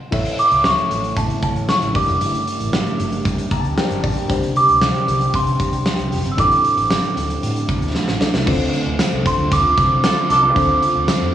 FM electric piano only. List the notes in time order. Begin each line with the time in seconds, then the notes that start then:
0.11 A2 E4 A4 C#5 E5
1.94 G2 D4 G4 A#4 D5
3.51 A#5
3.60 A5
3.77 D4 G4 A#4 C5 G5
3.85 D5
4.03 D5
4.28 C3 D4 G4 C5 D5
6.37 A2 D4 E4 A4 D5
8.20 D4 E4 A4 D5
8.46 D3 C4 D4 F4 A4 C5
10.55 D3 C4 D4 F4 A4 C5